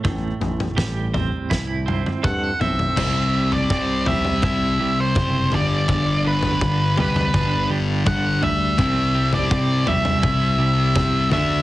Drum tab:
CC |----------------|x---------------|----------------|----------------|
SD |----o---o-------|----------------|----------------|----------------|
T1 |----------oo----|----------------|----------------|----------------|
T2 |------o-----o---|------oo--------|------oo--------|------oo--------|
FT |o-oo--o-------oo|o--o--o-o---o-o-|o--o--o-o---o-o-|o--o--o-o---o-o-|
BD |o---o---o---o---|o---o---o---o---|o---o---o---o---|o---o---o---o---|